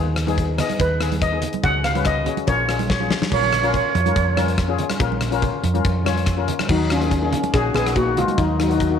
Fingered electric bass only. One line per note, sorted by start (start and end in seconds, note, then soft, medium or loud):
0.00 0.60 D#2 loud
0.80 1.44 D#2 medium
1.64 2.28 C#2 loud
2.48 3.12 A#1 medium
3.32 3.80 A#1 medium
3.95 4.11 F2 loud
4.16 4.80 F2 medium
5.00 5.48 A#1 loud
5.63 5.79 F2 loud
5.85 6.49 F2 medium
6.70 7.33 D#2 loud
7.54 7.70 A#1 medium
7.74 8.22 A#1 loud
8.38 8.99 D#2 loud